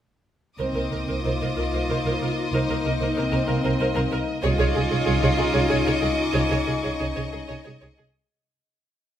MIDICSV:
0, 0, Header, 1, 9, 480
1, 0, Start_track
1, 0, Tempo, 651466
1, 435, Time_signature, 3, 2, 24, 8
1, 1400, Tempo, 633580
1, 4280, Tempo, 648649
1, 6867, End_track
2, 0, Start_track
2, 0, Title_t, "Violin section"
2, 0, Program_c, 0, 48
2, 424, Note_on_c, 0, 84, 24
2, 426, Note_on_c, 0, 86, 24
2, 426, Note_on_c, 0, 87, 23
2, 2088, Note_off_c, 0, 87, 0
2, 2569, Note_off_c, 0, 86, 0
2, 3046, Note_off_c, 0, 84, 0
2, 3321, Note_on_c, 0, 85, 43
2, 3321, Note_on_c, 0, 86, 41
2, 4927, Note_off_c, 0, 85, 0
2, 4927, Note_off_c, 0, 86, 0
2, 4927, Note_on_c, 0, 85, 41
2, 5455, Note_off_c, 0, 85, 0
2, 6867, End_track
3, 0, Start_track
3, 0, Title_t, "Harp"
3, 0, Program_c, 1, 46
3, 1408, Note_on_c, 1, 72, 24
3, 1409, Note_on_c, 1, 84, 34
3, 2594, Note_on_c, 1, 77, 37
3, 3346, Note_off_c, 1, 84, 0
3, 3347, Note_off_c, 1, 72, 0
3, 4028, Note_on_c, 1, 63, 39
3, 4030, Note_on_c, 1, 75, 52
3, 4036, Note_off_c, 1, 77, 0
3, 5462, Note_off_c, 1, 75, 0
3, 5471, Note_on_c, 1, 75, 29
3, 6222, Note_off_c, 1, 75, 0
3, 6224, Note_off_c, 1, 63, 0
3, 6867, End_track
4, 0, Start_track
4, 0, Title_t, "Violin section"
4, 0, Program_c, 2, 48
4, 437, Note_on_c, 2, 75, 37
4, 3293, Note_off_c, 2, 75, 0
4, 3320, Note_on_c, 2, 75, 62
4, 6030, Note_off_c, 2, 75, 0
4, 6867, End_track
5, 0, Start_track
5, 0, Title_t, "Violin section"
5, 0, Program_c, 3, 48
5, 437, Note_on_c, 3, 72, 37
5, 485, Note_off_c, 3, 72, 0
5, 560, Note_on_c, 3, 72, 27
5, 608, Note_off_c, 3, 72, 0
5, 677, Note_on_c, 3, 70, 26
5, 726, Note_off_c, 3, 70, 0
5, 800, Note_on_c, 3, 72, 29
5, 849, Note_off_c, 3, 72, 0
5, 922, Note_on_c, 3, 72, 37
5, 970, Note_off_c, 3, 72, 0
5, 1045, Note_on_c, 3, 72, 31
5, 1092, Note_off_c, 3, 72, 0
5, 1165, Note_on_c, 3, 70, 34
5, 1212, Note_off_c, 3, 70, 0
5, 1280, Note_on_c, 3, 72, 32
5, 1328, Note_off_c, 3, 72, 0
5, 1396, Note_on_c, 3, 72, 45
5, 1445, Note_off_c, 3, 72, 0
5, 1528, Note_on_c, 3, 72, 37
5, 1575, Note_off_c, 3, 72, 0
5, 1649, Note_on_c, 3, 70, 33
5, 1696, Note_off_c, 3, 70, 0
5, 1881, Note_on_c, 3, 72, 37
5, 1930, Note_off_c, 3, 72, 0
5, 2004, Note_on_c, 3, 72, 32
5, 2052, Note_off_c, 3, 72, 0
5, 2114, Note_on_c, 3, 70, 32
5, 2164, Note_off_c, 3, 70, 0
5, 2235, Note_on_c, 3, 72, 40
5, 2285, Note_off_c, 3, 72, 0
5, 2361, Note_on_c, 3, 72, 50
5, 2410, Note_off_c, 3, 72, 0
5, 2478, Note_on_c, 3, 72, 46
5, 2527, Note_off_c, 3, 72, 0
5, 2597, Note_on_c, 3, 70, 41
5, 2646, Note_off_c, 3, 70, 0
5, 2712, Note_on_c, 3, 72, 44
5, 2762, Note_off_c, 3, 72, 0
5, 2836, Note_on_c, 3, 72, 63
5, 2885, Note_off_c, 3, 72, 0
5, 2960, Note_on_c, 3, 72, 43
5, 3009, Note_off_c, 3, 72, 0
5, 3078, Note_on_c, 3, 70, 48
5, 3127, Note_off_c, 3, 70, 0
5, 3318, Note_on_c, 3, 73, 64
5, 3367, Note_off_c, 3, 73, 0
5, 3440, Note_on_c, 3, 73, 46
5, 3489, Note_off_c, 3, 73, 0
5, 3565, Note_on_c, 3, 68, 38
5, 3612, Note_off_c, 3, 68, 0
5, 3684, Note_on_c, 3, 73, 43
5, 3732, Note_off_c, 3, 73, 0
5, 3798, Note_on_c, 3, 73, 64
5, 3847, Note_off_c, 3, 73, 0
5, 3921, Note_on_c, 3, 73, 52
5, 3969, Note_off_c, 3, 73, 0
5, 4043, Note_on_c, 3, 68, 51
5, 4090, Note_off_c, 3, 68, 0
5, 4154, Note_on_c, 3, 73, 52
5, 4203, Note_off_c, 3, 73, 0
5, 4276, Note_on_c, 3, 73, 67
5, 4324, Note_off_c, 3, 73, 0
5, 4399, Note_on_c, 3, 73, 48
5, 4446, Note_off_c, 3, 73, 0
5, 4517, Note_on_c, 3, 68, 42
5, 4565, Note_off_c, 3, 68, 0
5, 4752, Note_on_c, 3, 73, 51
5, 4801, Note_off_c, 3, 73, 0
5, 4881, Note_on_c, 3, 73, 39
5, 4929, Note_off_c, 3, 73, 0
5, 5001, Note_on_c, 3, 68, 31
5, 5049, Note_off_c, 3, 68, 0
5, 5121, Note_on_c, 3, 73, 36
5, 5170, Note_off_c, 3, 73, 0
5, 5240, Note_on_c, 3, 73, 48
5, 5289, Note_off_c, 3, 73, 0
5, 5360, Note_on_c, 3, 73, 33
5, 5409, Note_off_c, 3, 73, 0
5, 5478, Note_on_c, 3, 68, 41
5, 5528, Note_off_c, 3, 68, 0
5, 5598, Note_on_c, 3, 73, 39
5, 5648, Note_off_c, 3, 73, 0
5, 5717, Note_on_c, 3, 73, 44
5, 5768, Note_off_c, 3, 73, 0
5, 5839, Note_on_c, 3, 73, 35
5, 5890, Note_off_c, 3, 73, 0
5, 5964, Note_on_c, 3, 68, 39
5, 6014, Note_off_c, 3, 68, 0
5, 6867, End_track
6, 0, Start_track
6, 0, Title_t, "Viola section"
6, 0, Program_c, 4, 48
6, 431, Note_on_c, 4, 70, 43
6, 480, Note_off_c, 4, 70, 0
6, 553, Note_on_c, 4, 70, 24
6, 602, Note_off_c, 4, 70, 0
6, 673, Note_on_c, 4, 70, 31
6, 723, Note_off_c, 4, 70, 0
6, 795, Note_on_c, 4, 70, 29
6, 844, Note_off_c, 4, 70, 0
6, 918, Note_on_c, 4, 70, 33
6, 967, Note_off_c, 4, 70, 0
6, 1037, Note_on_c, 4, 70, 30
6, 1086, Note_off_c, 4, 70, 0
6, 1154, Note_on_c, 4, 70, 28
6, 1203, Note_off_c, 4, 70, 0
6, 1276, Note_on_c, 4, 70, 32
6, 1325, Note_off_c, 4, 70, 0
6, 1394, Note_on_c, 4, 70, 50
6, 1443, Note_off_c, 4, 70, 0
6, 1518, Note_on_c, 4, 70, 36
6, 1567, Note_off_c, 4, 70, 0
6, 1637, Note_on_c, 4, 70, 40
6, 1686, Note_off_c, 4, 70, 0
6, 1876, Note_on_c, 4, 70, 44
6, 1925, Note_off_c, 4, 70, 0
6, 1997, Note_on_c, 4, 70, 35
6, 2047, Note_off_c, 4, 70, 0
6, 2115, Note_on_c, 4, 70, 36
6, 2165, Note_off_c, 4, 70, 0
6, 2237, Note_on_c, 4, 70, 36
6, 2287, Note_off_c, 4, 70, 0
6, 2353, Note_on_c, 4, 70, 56
6, 2403, Note_off_c, 4, 70, 0
6, 2469, Note_on_c, 4, 70, 43
6, 2520, Note_off_c, 4, 70, 0
6, 2589, Note_on_c, 4, 70, 45
6, 2640, Note_off_c, 4, 70, 0
6, 2711, Note_on_c, 4, 70, 44
6, 2761, Note_off_c, 4, 70, 0
6, 2830, Note_on_c, 4, 70, 69
6, 2881, Note_off_c, 4, 70, 0
6, 2944, Note_on_c, 4, 70, 53
6, 2996, Note_off_c, 4, 70, 0
6, 3068, Note_on_c, 4, 70, 53
6, 3119, Note_off_c, 4, 70, 0
6, 3311, Note_on_c, 4, 68, 66
6, 3361, Note_off_c, 4, 68, 0
6, 3430, Note_on_c, 4, 68, 48
6, 3481, Note_off_c, 4, 68, 0
6, 3551, Note_on_c, 4, 68, 41
6, 3601, Note_off_c, 4, 68, 0
6, 3670, Note_on_c, 4, 68, 45
6, 3721, Note_off_c, 4, 68, 0
6, 3792, Note_on_c, 4, 68, 73
6, 3842, Note_off_c, 4, 68, 0
6, 3916, Note_on_c, 4, 68, 49
6, 3965, Note_off_c, 4, 68, 0
6, 4035, Note_on_c, 4, 68, 53
6, 4084, Note_off_c, 4, 68, 0
6, 4150, Note_on_c, 4, 68, 54
6, 4200, Note_off_c, 4, 68, 0
6, 4267, Note_on_c, 4, 68, 61
6, 4317, Note_off_c, 4, 68, 0
6, 4389, Note_on_c, 4, 68, 47
6, 4438, Note_off_c, 4, 68, 0
6, 4507, Note_on_c, 4, 68, 45
6, 4556, Note_off_c, 4, 68, 0
6, 4745, Note_on_c, 4, 68, 53
6, 4796, Note_off_c, 4, 68, 0
6, 4866, Note_on_c, 4, 68, 38
6, 4917, Note_off_c, 4, 68, 0
6, 4991, Note_on_c, 4, 68, 38
6, 5041, Note_off_c, 4, 68, 0
6, 5112, Note_on_c, 4, 68, 37
6, 5162, Note_off_c, 4, 68, 0
6, 5234, Note_on_c, 4, 68, 42
6, 5284, Note_off_c, 4, 68, 0
6, 5356, Note_on_c, 4, 68, 36
6, 5406, Note_off_c, 4, 68, 0
6, 5480, Note_on_c, 4, 68, 36
6, 5529, Note_off_c, 4, 68, 0
6, 5599, Note_on_c, 4, 68, 33
6, 5649, Note_off_c, 4, 68, 0
6, 5719, Note_on_c, 4, 68, 47
6, 5769, Note_off_c, 4, 68, 0
6, 5842, Note_on_c, 4, 68, 38
6, 5892, Note_off_c, 4, 68, 0
6, 5965, Note_on_c, 4, 68, 38
6, 6014, Note_off_c, 4, 68, 0
6, 6867, End_track
7, 0, Start_track
7, 0, Title_t, "Cello section"
7, 0, Program_c, 5, 48
7, 433, Note_on_c, 5, 60, 45
7, 890, Note_off_c, 5, 60, 0
7, 917, Note_on_c, 5, 65, 53
7, 1861, Note_off_c, 5, 65, 0
7, 1882, Note_on_c, 5, 63, 53
7, 2363, Note_on_c, 5, 60, 59
7, 2364, Note_off_c, 5, 63, 0
7, 3082, Note_off_c, 5, 60, 0
7, 3322, Note_on_c, 5, 65, 90
7, 4726, Note_off_c, 5, 65, 0
7, 4752, Note_on_c, 5, 65, 60
7, 5230, Note_off_c, 5, 65, 0
7, 5241, Note_on_c, 5, 63, 44
7, 5727, Note_off_c, 5, 63, 0
7, 6867, End_track
8, 0, Start_track
8, 0, Title_t, "French horn section"
8, 0, Program_c, 6, 60
8, 434, Note_on_c, 6, 58, 38
8, 436, Note_on_c, 6, 63, 37
8, 3292, Note_off_c, 6, 58, 0
8, 3292, Note_off_c, 6, 63, 0
8, 3315, Note_on_c, 6, 63, 69
8, 3318, Note_on_c, 6, 61, 67
8, 5937, Note_off_c, 6, 63, 0
8, 5939, Note_off_c, 6, 61, 0
8, 6867, End_track
9, 0, Start_track
9, 0, Title_t, "Double bass section"
9, 0, Program_c, 7, 48
9, 432, Note_on_c, 7, 36, 38
9, 480, Note_off_c, 7, 36, 0
9, 550, Note_on_c, 7, 36, 25
9, 600, Note_off_c, 7, 36, 0
9, 675, Note_on_c, 7, 36, 31
9, 724, Note_off_c, 7, 36, 0
9, 797, Note_on_c, 7, 36, 30
9, 846, Note_off_c, 7, 36, 0
9, 914, Note_on_c, 7, 36, 39
9, 964, Note_off_c, 7, 36, 0
9, 1037, Note_on_c, 7, 36, 26
9, 1085, Note_off_c, 7, 36, 0
9, 1159, Note_on_c, 7, 36, 32
9, 1207, Note_off_c, 7, 36, 0
9, 1276, Note_on_c, 7, 36, 28
9, 1324, Note_off_c, 7, 36, 0
9, 1393, Note_on_c, 7, 36, 41
9, 1443, Note_off_c, 7, 36, 0
9, 1514, Note_on_c, 7, 36, 30
9, 1563, Note_off_c, 7, 36, 0
9, 1635, Note_on_c, 7, 36, 34
9, 1685, Note_off_c, 7, 36, 0
9, 1875, Note_on_c, 7, 36, 47
9, 1924, Note_off_c, 7, 36, 0
9, 1999, Note_on_c, 7, 36, 36
9, 2048, Note_off_c, 7, 36, 0
9, 2123, Note_on_c, 7, 36, 38
9, 2171, Note_off_c, 7, 36, 0
9, 2241, Note_on_c, 7, 36, 41
9, 2290, Note_off_c, 7, 36, 0
9, 2362, Note_on_c, 7, 36, 58
9, 2410, Note_off_c, 7, 36, 0
9, 2482, Note_on_c, 7, 36, 40
9, 2530, Note_off_c, 7, 36, 0
9, 2596, Note_on_c, 7, 36, 42
9, 2646, Note_off_c, 7, 36, 0
9, 2718, Note_on_c, 7, 36, 40
9, 2767, Note_off_c, 7, 36, 0
9, 2836, Note_on_c, 7, 36, 60
9, 2885, Note_off_c, 7, 36, 0
9, 2960, Note_on_c, 7, 36, 46
9, 3009, Note_off_c, 7, 36, 0
9, 3079, Note_on_c, 7, 36, 45
9, 3128, Note_off_c, 7, 36, 0
9, 3318, Note_on_c, 7, 36, 63
9, 3367, Note_off_c, 7, 36, 0
9, 3441, Note_on_c, 7, 36, 46
9, 3489, Note_off_c, 7, 36, 0
9, 3557, Note_on_c, 7, 36, 51
9, 3606, Note_off_c, 7, 36, 0
9, 3675, Note_on_c, 7, 36, 54
9, 3724, Note_off_c, 7, 36, 0
9, 3796, Note_on_c, 7, 36, 76
9, 3845, Note_off_c, 7, 36, 0
9, 3921, Note_on_c, 7, 36, 44
9, 3969, Note_off_c, 7, 36, 0
9, 4039, Note_on_c, 7, 36, 50
9, 4087, Note_off_c, 7, 36, 0
9, 4157, Note_on_c, 7, 36, 46
9, 4205, Note_off_c, 7, 36, 0
9, 4282, Note_on_c, 7, 36, 65
9, 4329, Note_off_c, 7, 36, 0
9, 4394, Note_on_c, 7, 36, 42
9, 4442, Note_off_c, 7, 36, 0
9, 4517, Note_on_c, 7, 36, 38
9, 4565, Note_off_c, 7, 36, 0
9, 4756, Note_on_c, 7, 36, 54
9, 4804, Note_off_c, 7, 36, 0
9, 4878, Note_on_c, 7, 36, 35
9, 4926, Note_off_c, 7, 36, 0
9, 4998, Note_on_c, 7, 36, 40
9, 5046, Note_off_c, 7, 36, 0
9, 5121, Note_on_c, 7, 36, 40
9, 5170, Note_off_c, 7, 36, 0
9, 5244, Note_on_c, 7, 36, 49
9, 5292, Note_off_c, 7, 36, 0
9, 5364, Note_on_c, 7, 36, 32
9, 5412, Note_off_c, 7, 36, 0
9, 5489, Note_on_c, 7, 36, 36
9, 5536, Note_off_c, 7, 36, 0
9, 5610, Note_on_c, 7, 36, 36
9, 5658, Note_off_c, 7, 36, 0
9, 5732, Note_on_c, 7, 36, 46
9, 5779, Note_off_c, 7, 36, 0
9, 5852, Note_on_c, 7, 36, 35
9, 5900, Note_off_c, 7, 36, 0
9, 5975, Note_on_c, 7, 36, 36
9, 6022, Note_off_c, 7, 36, 0
9, 6867, End_track
0, 0, End_of_file